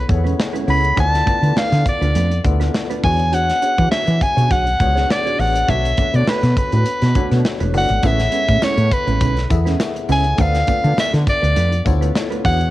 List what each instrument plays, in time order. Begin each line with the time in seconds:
Already playing: tine electric piano B3 E4 G#4 A4 C#5
0.07 fretless electric bass E2, tine electric piano B3 E4 G#4 A4 C#5, muted clean electric guitar stroke, kick, closed hi-hat
0.24 clean electric guitar G#3 C#4 E4 B4, closed hi-hat
0.38 muted clean electric guitar stroke, snare
0.53 clean electric guitar G#3 C#4 E4 B4, closed hi-hat
0.67 fretless electric bass C#2, clean electric guitar G#3 C#4 E4 B4, tine electric piano B3 E4 G#4 A4 C#5, soprano saxophone B5, open hi-hat
0.82 muted clean electric guitar stroke, closed hi-hat
0.96 fretless electric bass D2, clean electric guitar A3 D4 F4 B4, tine electric piano B3 E4 F4 A4 C#5, soprano saxophone A5, kick, closed hi-hat
1.05 tine electric piano D5
1.15 snare, closed hi-hat
1.26 clean electric guitar A3 D4 F4 B4, kick, closed hi-hat
1.42 fretless electric bass D3, clean electric guitar A3 D4 F4 B4, closed hi-hat
1.56 clean electric guitar A3 D4 F4 B4, soprano saxophone F5, muted fretless electric bass stroke, snare
1.72 fretless electric bass D3, muted clean electric guitar stroke, snare, closed hi-hat
1.86 soprano saxophone D5, muted clean electric guitar stroke, kick, closed hi-hat
2.01 fretless electric bass D2, clean electric guitar A3 D4 F4 B4, closed hi-hat
2.15 fretless electric bass F2, clean electric guitar A3 D4 F4 B4, closed hi-hat
2.31 muted clean electric guitar stroke, closed hi-hat
2.44 fretless electric bass D2, tine electric piano B3 E4 F4 A4 D5, muted clean electric guitar stroke, kick, closed hi-hat
2.60 clean electric guitar A3 D4 F4 B4, snare, closed hi-hat
2.74 muted clean electric guitar stroke, snare
2.90 clean electric guitar A3 D4 F4 B4, closed hi-hat
3.03 fretless electric bass E2, tine electric piano B3 D4 F#4 G#4 C#5, clean electric guitar D4 F#4 G#4 C#5, soprano saxophone G#5, kick, open hi-hat
3.19 closed hi-hat
3.32 clean electric guitar D4 F#4 G#4 C#5, soprano saxophone F#5, closed hi-hat
3.49 snare, closed hi-hat
3.62 clean electric guitar D4 F#4 G#4 C#5, closed hi-hat
3.78 fretless electric bass E3, clean electric guitar D4 F#4 G#4 C#5, kick, closed hi-hat
3.91 clean electric guitar D4 F#4 G#4 C#5, soprano saxophone E5, muted fretless electric bass stroke, snare
4.07 fretless electric bass E3, muted clean electric guitar stroke, closed hi-hat
4.21 soprano saxophone G#5, muted clean electric guitar stroke, kick, closed hi-hat
4.37 fretless electric bass B2, clean electric guitar D4 F#4 G#4 C#5, closed hi-hat
4.50 fretless electric bass B1, clean electric guitar D4 F#4 G#4 C#5, soprano saxophone F#5, kick, closed hi-hat
4.66 muted clean electric guitar stroke, closed hi-hat
4.80 fretless electric bass C#2, tine electric piano B3 D4 F#4 G#4 C#5, muted clean electric guitar stroke, kick, closed hi-hat
4.95 clean electric guitar D4 F#4 G#4 C#5, snare, closed hi-hat
5.09 soprano saxophone D5, muted clean electric guitar stroke, snare
5.25 clean electric guitar D4 F#4 G#4 C#5, closed hi-hat
5.39 fretless electric bass A1, tine electric piano B3 D4 F#4 G#4 C#5, soprano saxophone F#5, muted clean electric guitar stroke, open hi-hat
5.55 muted clean electric guitar stroke, closed hi-hat
5.68 fretless electric bass B1, clean electric guitar A3 D4 F#4 B4, tine electric piano B3 D4 F#4 A4 C#5, soprano saxophone E5, kick, closed hi-hat
5.85 closed hi-hat
5.97 clean electric guitar A3 D4 F#4 B4, kick, closed hi-hat
6.13 fretless electric bass B2, clean electric guitar A3 D4 F#4 B4, soprano saxophone D5, closed hi-hat
6.27 clean electric guitar A3 D4 F#4 B4, soprano saxophone B4, muted fretless electric bass stroke, snare
6.43 fretless electric bass B2, muted clean electric guitar stroke, snare, closed hi-hat
6.57 soprano saxophone B4, muted clean electric guitar stroke, kick, closed hi-hat
6.72 fretless electric bass A2, clean electric guitar A3 D4 F#4 B4, closed hi-hat
6.86 muted clean electric guitar stroke, closed hi-hat
7.02 fretless electric bass B2, muted clean electric guitar stroke, snare, closed hi-hat
7.15 clean electric guitar A3 D4 F#4 B4, tine electric piano B3 D4 F#4 A4 C#5, kick, closed hi-hat
7.31 fretless electric bass B2, clean electric guitar A3 D4 F#4 B4, snare, closed hi-hat
7.45 muted clean electric guitar stroke, snare
7.60 fretless electric bass E1, clean electric guitar A3 D4 F#4 B4, closed hi-hat
7.73 fretless electric bass F#1, clean electric guitar A3 D4 F#4 B4, tine electric piano B3 D4 F#4 A4 D5, open hi-hat
7.78 soprano saxophone F#5
7.89 fretless electric bass G#1, closed hi-hat
8.03 fretless electric bass A1, clean electric guitar G#3 C#4 E4 B4, tine electric piano B3 E4 G#4 A4 C5, soprano saxophone E5, kick, closed hi-hat, tambourine
8.11 tine electric piano C#5
8.19 snare, closed hi-hat, tambourine
8.32 clean electric guitar G#3 C#4 E4 B4, closed hi-hat, tambourine
8.48 fretless electric bass A2, clean electric guitar G#3 C#4 E4 B4, kick, closed hi-hat, tambourine
8.62 clean electric guitar G#3 C#4 E4 B4, soprano saxophone C#5, muted fretless electric bass stroke, snare, tambourine
8.77 fretless electric bass A2, muted clean electric guitar stroke, closed hi-hat
8.91 soprano saxophone B4, muted clean electric guitar stroke, kick, closed hi-hat, tambourine
9.07 fretless electric bass A1, clean electric guitar G#3 C#4 E4 B4, closed hi-hat
9.21 fretless electric bass B1, clean electric guitar G#3 C#4 E4 B4, kick, closed hi-hat, tambourine
9.37 snare, closed hi-hat
9.50 fretless electric bass E2, tine electric piano B3 E4 G#4 A4 E5, muted clean electric guitar stroke, kick, closed hi-hat, tambourine
9.65 clean electric guitar G#3 C#4 E4 B4, snare, closed hi-hat, tambourine
9.79 muted clean electric guitar stroke, snare, tambourine
9.95 muted clean electric guitar stroke, closed hi-hat
10.09 fretless electric bass C#2, clean electric guitar G#3 C#4 E4 B4, tine electric piano B3 E4 G#4 A4 C#5, soprano saxophone G#5, open hi-hat, tambourine
10.24 muted clean electric guitar stroke, closed hi-hat, tambourine
10.37 fretless electric bass D2, clean electric guitar A3 D4 F4 B4, tine electric piano B3 D4 F4 A4 D5, soprano saxophone F5, kick, closed hi-hat, tambourine
10.55 snare, closed hi-hat, tambourine
10.67 clean electric guitar A3 D4 F4 B4, kick, closed hi-hat, tambourine
10.83 fretless electric bass D3, clean electric guitar A3 D4 F4 B4, closed hi-hat
10.96 clean electric guitar A3 D4 F4 B4, soprano saxophone E5, muted fretless electric bass stroke, snare, tambourine
11.13 fretless electric bass D3, muted clean electric guitar stroke, snare, closed hi-hat
11.26 soprano saxophone D5, muted clean electric guitar stroke, kick, closed hi-hat, tambourine
11.42 fretless electric bass D2, clean electric guitar A3 D4 F4 B4, closed hi-hat
11.56 fretless electric bass F2, clean electric guitar A3 D4 F4 B4, closed hi-hat, tambourine
11.72 muted clean electric guitar stroke, closed hi-hat
11.85 fretless electric bass D2, tine electric piano B3 E4 F4 A4 C#5, muted clean electric guitar stroke, kick, closed hi-hat, tambourine
12.01 clean electric guitar A3 D4 F4 B4, closed hi-hat, tambourine
12.15 snare, tambourine
12.31 clean electric guitar A3 D4 F4 B4, closed hi-hat
12.44 fretless electric bass E2, tine electric piano B3 D4 F#4 G#4 C#5, clean electric guitar D4 F#4 G#4 C#5, soprano saxophone F#5, kick, open hi-hat, tambourine
12.60 muted clean electric guitar stroke, closed hi-hat